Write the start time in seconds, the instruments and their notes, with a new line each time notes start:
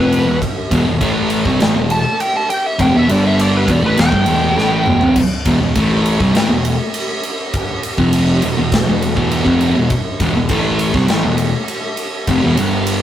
Already playing: picked electric bass F1, distorted electric guitar F2 C3 F3, lead electric guitar B4
0.12 ride
0.27 picked electric bass E1, distorted electric guitar E2 B2
0.42 kick, ride
0.71 picked electric bass E1, distorted electric guitar E2 B2, kick, ride
0.86 picked electric bass E1, distorted electric guitar E2 B2
1.01 picked electric bass A1, distorted electric guitar A2 E3 A3, kick, ride
1.30 ride
1.45 picked electric bass C2, distorted electric guitar C3 G3, kick, snare
1.60 picked electric bass A1, distorted electric guitar A2 E3, snare, ride
1.76 picked electric bass E1, distorted electric guitar E2 B2
1.90 lead electric guitar A5, ride
2.20 lead electric guitar G5, ride
2.36 lead electric guitar A5
2.50 lead electric guitar G5, ride
2.66 lead electric guitar E5
2.79 picked electric bass F1, distorted electric guitar F2 C3, lead electric guitar G5, kick, ride
2.93 picked electric bass E1, distorted electric guitar E2 B2, lead electric guitar E5
3.08 picked electric bass G1, distorted electric guitar G2 D3 G3, lead electric guitar D5, ride
3.27 lead electric guitar E5
3.39 lead electric guitar D5, ride
3.57 lead electric guitar B4
3.67 picked electric bass E1, distorted electric guitar E2 B2, kick, ride
3.72 lead electric guitar D5
3.82 picked electric bass A1, distorted electric guitar A2 E3
3.86 lead electric guitar B4
3.97 picked electric bass E1, distorted electric guitar E2 B2, lead electric guitar G5, snare, ride
4.12 picked electric bass G1, distorted electric guitar G2 D3, kick
4.26 picked electric bass E1, distorted electric guitar E2 B2 E3, ride
4.55 picked electric bass A1, distorted electric guitar A2 E3 A3, snare
4.86 picked electric bass E1, distorted electric guitar E2 B2, mid tom
5.01 picked electric bass F1, distorted electric guitar F2 C3, floor tom
5.16 kick, crash
5.45 picked electric bass E1, distorted electric guitar E2 B2, kick, ride
5.61 picked electric bass E1, distorted electric guitar E2 B2
5.75 picked electric bass A1, distorted electric guitar A2 E3 A3, kick, ride
6.06 ride
6.20 picked electric bass C2, distorted electric guitar C3 G3, kick, snare
6.34 picked electric bass A1, distorted electric guitar A2 E3, snare, ride
6.48 picked electric bass E1, distorted electric guitar E2 B2
6.65 ride
6.94 ride
7.23 ride
7.54 kick, ride
7.83 ride
7.98 picked electric bass F1, distorted electric guitar F2 C3 F3, kick
8.13 ride
8.42 picked electric bass E1, distorted electric guitar E2 B2, ride
8.57 picked electric bass E1, distorted electric guitar E2 B2
8.72 kick, snare, ride
8.86 picked electric bass E1, distorted electric guitar E2 B2
9.02 ride
9.16 picked electric bass E1, distorted electric guitar E2 B2 E3, kick
9.31 ride
9.45 picked electric bass F1, distorted electric guitar F2 C3 F3, kick
9.61 ride
9.75 picked electric bass E1, distorted electric guitar E2 B2
9.90 kick, ride
10.20 picked electric bass E1, distorted electric guitar E2 B2, kick, ride
10.35 picked electric bass E1, distorted electric guitar E2 B2
10.49 picked electric bass A1, distorted electric guitar A2 E3 A3, kick, ride
10.79 ride
10.94 picked electric bass C2, distorted electric guitar C3 G3, kick, snare
11.08 picked electric bass A1, distorted electric guitar A2 E3, snare, ride
11.23 picked electric bass E1, distorted electric guitar E2 B2
11.38 ride
11.68 ride
11.97 ride
12.27 picked electric bass F1, distorted electric guitar F2 C3, kick, ride
12.43 picked electric bass E1, distorted electric guitar E2 B2
12.57 picked electric bass G1, distorted electric guitar G2 D3 G3, ride
12.87 ride